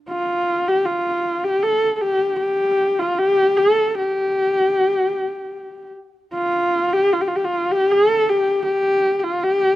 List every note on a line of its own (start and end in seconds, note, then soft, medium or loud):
0.09 0.70 F4 medium
0.68 0.87 G4 medium
0.86 1.46 F4 medium
1.44 1.64 G4 medium
1.63 1.96 A4 loud
1.96 2.03 A4 medium
2.02 2.39 G4 loud
2.40 3.01 G4 loud
2.99 3.20 F4 medium
3.18 3.58 G4 loud
3.57 3.97 A4 loud
3.98 5.89 G4 medium
6.34 6.94 F4 loud
6.93 7.14 G4 loud
7.13 7.23 F4 medium
7.21 7.29 G4 medium
7.28 7.37 F4 medium
7.36 7.46 G4 medium
7.45 7.73 F4 medium
7.72 7.93 G4 loud
7.92 8.31 A4 loud
8.29 8.66 G4 medium
8.66 9.20 G4 loud
9.20 9.45 F4 medium
9.20 9.25 G4 medium
9.44 9.76 G4 loud